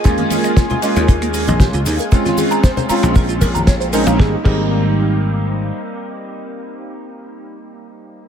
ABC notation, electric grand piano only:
X:1
M:4/4
L:1/8
Q:1/4=116
K:Ab
V:1 name="Electric grand piano"
[A,B,DF]3 [A,B,DF]4- [A,B,DF] | [A,CDF]3 [A,CDF]4 [A,CDE] | [G,B,CE] [G,B,CE]6- [G,B,CE]- | [G,B,CE]8 |]